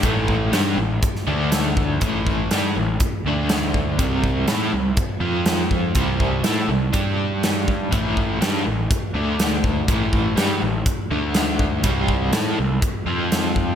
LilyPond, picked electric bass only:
\new Staff \with { instrumentName = "Picked electric bass" } { \clef bass \time 4/4 \key a \minor \tempo 4 = 122 a,,4 g,8 a,,8 r8 d,4. | a,,4 g,8 a,,8 r8 d,4. | c,4 a,8 c,8 r8 f,4. | c,4 a,8 c,8 g,2 |
a,,4 g,8 a,,8 r8 d,4. | a,,4 g,8 a,,8 r8 d,4. | c,4 a,8 c,8 r8 f,4. | }